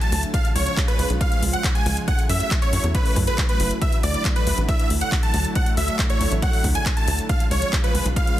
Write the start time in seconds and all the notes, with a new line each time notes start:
0.01 D3 F#3 A3 E4 A5, closed hi-hat
0.12 D2 D3 F#3 A3 E4, open hi-hat
0.23 D3 F#3 A3 E4, closed hi-hat
0.34 C#3 F3 G#3 F4 F5, kick, closed hi-hat
0.45 closed hi-hat
0.55 C#2 C#3 F3 G#3 F4 C#5, open hi-hat
0.67 closed hi-hat
0.77 C#3 F3 G#3 F4, kick, clap, closed hi-hat
0.88 B4, closed hi-hat
0.99 C#2 C#3 F3 G#3 F4, open hi-hat
1.10 B1, closed hi-hat
1.21 C#3 F3 G#3 F4 F5, kick, closed hi-hat
1.32 closed hi-hat
1.42 C#2 C#3 F3 G#3 F4, open hi-hat
1.53 F#5, closed hi-hat
1.64 kick, clap, closed hi-hat
1.75 C#3 F3 G#3 F4 G#5, closed hi-hat
1.86 C#2 C#3 F3 G#3 F4, open hi-hat
1.97 C#3 F3 G#3 F4, closed hi-hat
2.08 C#3 F#3 A3 E4 F#5, kick, closed hi-hat
2.19 closed hi-hat
2.29 F#2 C#3 F#3 A3 E4 E5, open hi-hat
2.40 closed hi-hat
2.51 C#3 F#3 A3 E4, kick, clap, closed hi-hat
2.62 C#5, closed hi-hat
2.73 F#2 C#3 F#3 A3 E4, open hi-hat
2.84 E2, closed hi-hat
2.95 C#3 F#3 A3 E4 B4, kick, closed hi-hat
3.06 open hi-hat
3.16 F#2 C#3 F#3 A3 E4, kick, open hi-hat
3.27 B4, closed hi-hat
3.38 kick, clap, closed hi-hat
3.49 C#3 F#3 A3 E4 B4, closed hi-hat
3.60 F#1 C#3 F#3 A3 E4, open hi-hat
3.70 C#3 F#3 A3 E4, closed hi-hat
3.81 D3 F#3 A3 E4 E5, kick, closed hi-hat
3.92 closed hi-hat
4.03 D2 D3 F#3 A3 E4 D5, open hi-hat
4.14 closed hi-hat
4.25 D3 F#3 A3 E4, kick, clap, closed hi-hat
4.36 B4, closed hi-hat
4.47 D2 D3 F#3 A3 E4, open hi-hat
4.58 A1, closed hi-hat
4.68 D3 F#3 A3 E4 E5, kick, closed hi-hat
4.80 closed hi-hat
4.90 D2 D3 F#3 A3 E4, open hi-hat
5.01 F#5, closed hi-hat
5.12 kick, clap, closed hi-hat
5.23 D3 F#3 A3 E4 A5, closed hi-hat
5.34 D2 D3 F#3 A3 E4, open hi-hat
5.45 D3 F#3 A3 E4, closed hi-hat
5.55 D3 F#3 A3 E4 F#5, kick, closed hi-hat
5.66 closed hi-hat
5.77 D2 D3 F#3 A3 E4 E5, open hi-hat
5.88 closed hi-hat
5.99 D3 F#3 A3 E4, kick, clap, closed hi-hat
6.10 C#5, closed hi-hat
6.21 D2 D3 F#3 A3 E4, open hi-hat
6.32 A1, closed hi-hat
6.42 D3 F#3 A3 E4 F#5, kick, closed hi-hat
6.53 open hi-hat
6.64 D2 D3 F#3 A3 E4, kick, open hi-hat
6.75 G#5, closed hi-hat
6.86 kick, clap, closed hi-hat
6.97 D3 F#3 A3 E4 A5, closed hi-hat
7.08 D2 D3 F#3 A3 E4, open hi-hat
7.19 D3 F#3 A3 E4, closed hi-hat
7.29 C#3 F3 G#3 F4 F5, kick, closed hi-hat
7.40 closed hi-hat
7.51 C#2 C#3 F3 G#3 F4 C#5, open hi-hat
7.62 closed hi-hat
7.73 C#3 F3 G#3 F4, kick, clap, closed hi-hat
7.84 B4, closed hi-hat
7.95 C#2 C#3 F3 G#3 F4, open hi-hat
8.05 B1, closed hi-hat
8.16 C#3 F3 G#3 F4 F5, kick, closed hi-hat
8.27 closed hi-hat